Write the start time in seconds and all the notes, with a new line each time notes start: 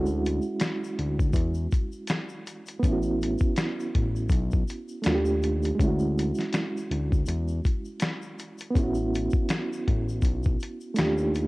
Already playing: D2 G#3 C#4 E4 F#4
0.06 shaker
0.25 closed hi-hat, shaker
0.42 shaker
0.60 finger snap, snare, closed hi-hat, shaker
0.84 shaker
0.99 D2, closed hi-hat
1.19 kick, shaker
1.33 E2, kick, closed hi-hat, shaker
1.54 shaker
1.71 kick, closed hi-hat, shaker
1.92 shaker
2.07 finger snap, snare, closed hi-hat, shaker
2.29 shaker
2.47 closed hi-hat, shaker
2.66 closed hi-hat, shaker
2.79 B3, kick, shaker
2.84 A1 C#4, closed hi-hat
2.88 E4
2.92 F#4
3.02 shaker
3.22 closed hi-hat, shaker
3.38 kick, shaker
3.56 finger snap, snare, closed hi-hat, shaker
3.80 shaker
3.95 A1, kick, closed hi-hat
4.16 shaker
4.29 B1, kick, closed hi-hat, shaker
4.51 kick, shaker
4.68 closed hi-hat, shaker
4.88 shaker
5.02 D#2 A3 D4, closed hi-hat, shaker
5.06 F4 F#4, finger snap, snare
5.15 G4
5.25 shaker
5.43 closed hi-hat, shaker
5.63 closed hi-hat, shaker
5.75 G#3
5.79 D2 C#4, kick, closed hi-hat, shaker
5.83 E4
5.88 F#4
5.99 shaker
6.18 closed hi-hat, shaker
6.35 snare, shaker
6.41 closed hi-hat
6.53 finger snap, snare, closed hi-hat, shaker
6.77 shaker
6.91 D2, closed hi-hat
7.12 kick, shaker
7.26 E2, closed hi-hat, shaker
7.48 shaker
7.65 kick, closed hi-hat, shaker
7.85 shaker
8.00 finger snap, snare, closed hi-hat, shaker
8.22 shaker
8.39 closed hi-hat, shaker
8.58 closed hi-hat, shaker
8.71 B3 C#4
8.76 A1 E4, kick, closed hi-hat, shaker
8.83 F#4
8.95 shaker
9.14 closed hi-hat, shaker
9.30 kick, shaker
9.49 finger snap, snare, closed hi-hat, shaker
9.73 shaker
9.88 A1, kick, closed hi-hat
10.09 shaker
10.22 B1, kick, closed hi-hat, shaker
10.43 kick, shaker
10.60 closed hi-hat, shaker
10.81 shaker
10.94 A3 D4, closed hi-hat, shaker
10.99 D#2 F4 G4, finger snap, snare
11.18 shaker
11.35 closed hi-hat, shaker